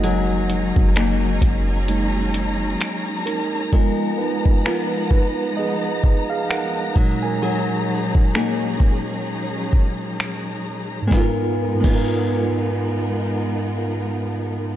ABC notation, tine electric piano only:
X:1
M:4/4
L:1/16
Q:"Swing 16ths" 1/4=65
K:G#dor
V:1 name="Tine electric piano"
[Fd]6- [Fd] z6 z [DA]2- | [DA]2 [DB]4 [DB]2 [Gd]3 [Ge] [Af]3 [Ag]- | [Ag]12 z4 | [G,,B,DEA] z2 [G,,B,DEA]12- [G,,B,DEA] |]
V:2 name="Tine electric piano"
[G,A,D]4 z4 [G,A,D]2 z6 | [G,B,E]6 z8 [A,,G,D]2- | [A,,G,D]4 z12 | z16 |]